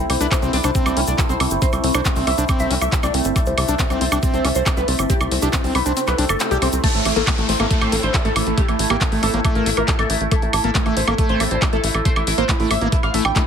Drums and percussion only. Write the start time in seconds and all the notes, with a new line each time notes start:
0.10 open hi-hat, high woodblock
0.21 closed hi-hat, shaker
0.31 kick, clap, closed hi-hat, high woodblock, shaker
0.42 closed hi-hat, shaker
0.53 open hi-hat
0.64 closed hi-hat, high woodblock, shaker
0.75 kick, closed hi-hat, shaker
0.86 closed hi-hat, high woodblock, shaker
0.97 open hi-hat
1.07 closed hi-hat, shaker
1.18 kick, clap, closed hi-hat, high woodblock, shaker
1.29 closed hi-hat, shaker
1.40 open hi-hat, high woodblock
1.50 closed hi-hat, shaker
1.62 kick, closed hi-hat, shaker
1.73 closed hi-hat, high woodblock, shaker
1.84 open hi-hat
1.94 closed hi-hat, high woodblock, shaker
2.05 kick, clap, closed hi-hat, shaker
2.16 open hi-hat, shaker
2.27 open hi-hat, high woodblock
2.38 closed hi-hat, shaker
2.48 kick, closed hi-hat, high woodblock, shaker
2.59 closed hi-hat, shaker
2.71 open hi-hat
2.81 closed hi-hat, high woodblock, shaker
2.92 kick, clap, closed hi-hat, shaker
3.03 closed hi-hat, high woodblock, shaker
3.14 open hi-hat
3.24 closed hi-hat, shaker
3.36 kick, closed hi-hat, high woodblock, shaker
3.46 closed hi-hat, shaker
3.58 open hi-hat, high woodblock
3.68 closed hi-hat, shaker
3.79 kick, clap, closed hi-hat, shaker
3.90 closed hi-hat, high woodblock, shaker
4.01 open hi-hat
4.12 closed hi-hat, high woodblock, shaker
4.23 kick, closed hi-hat, shaker
4.34 closed hi-hat, shaker
4.45 open hi-hat, high woodblock
4.55 closed hi-hat, shaker
4.66 kick, clap, closed hi-hat, high woodblock, shaker
4.77 closed hi-hat, shaker
4.88 open hi-hat
4.99 closed hi-hat, high woodblock, shaker
5.10 kick, closed hi-hat, shaker
5.21 closed hi-hat, high woodblock, shaker
5.31 open hi-hat
5.42 closed hi-hat, shaker
5.53 kick, clap, closed hi-hat, high woodblock, shaker
5.64 open hi-hat, shaker
5.75 open hi-hat, high woodblock
5.86 closed hi-hat, shaker
5.97 closed hi-hat, shaker
6.07 clap, closed hi-hat, high woodblock, shaker
6.18 open hi-hat
6.29 closed hi-hat, high woodblock, shaker
6.40 clap, closed hi-hat, shaker
6.51 closed hi-hat, shaker
6.62 open hi-hat, high woodblock
6.73 closed hi-hat, shaker
6.84 kick, closed hi-hat, crash
6.95 closed hi-hat
7.05 open hi-hat, high woodblock
7.16 closed hi-hat
7.27 kick, clap, closed hi-hat, high woodblock
7.38 closed hi-hat
7.49 open hi-hat
7.60 closed hi-hat, high woodblock
7.71 kick, closed hi-hat
7.81 closed hi-hat, high woodblock
7.92 open hi-hat
8.03 closed hi-hat
8.14 kick, clap, closed hi-hat, high woodblock
8.25 closed hi-hat
8.36 open hi-hat, high woodblock
8.47 closed hi-hat
8.58 kick, closed hi-hat
8.68 closed hi-hat, high woodblock
8.79 open hi-hat
8.90 closed hi-hat, high woodblock
9.01 kick, clap, closed hi-hat
9.12 open hi-hat
9.23 open hi-hat, high woodblock
9.34 closed hi-hat
9.45 kick, closed hi-hat, high woodblock
9.55 closed hi-hat
9.66 open hi-hat
9.77 closed hi-hat, high woodblock
9.88 kick, clap, closed hi-hat
9.99 closed hi-hat, high woodblock
10.10 open hi-hat
10.21 closed hi-hat
10.31 kick, closed hi-hat, high woodblock
10.42 closed hi-hat
10.53 open hi-hat, high woodblock
10.64 closed hi-hat
10.75 kick, clap, closed hi-hat
10.86 closed hi-hat, high woodblock
10.97 open hi-hat
11.08 closed hi-hat, high woodblock
11.18 kick, closed hi-hat
11.29 closed hi-hat
11.40 open hi-hat, high woodblock
11.51 closed hi-hat
11.62 kick, clap, closed hi-hat, high woodblock
11.73 closed hi-hat
11.84 open hi-hat
11.95 closed hi-hat, high woodblock
12.05 kick, closed hi-hat
12.16 closed hi-hat, high woodblock
12.27 open hi-hat
12.38 closed hi-hat
12.49 kick, clap, closed hi-hat, high woodblock
12.60 open hi-hat
12.71 open hi-hat, high woodblock
12.81 closed hi-hat
12.92 kick, closed hi-hat
13.03 closed hi-hat, high woodblock
13.14 open hi-hat
13.25 high woodblock
13.36 kick, clap, closed hi-hat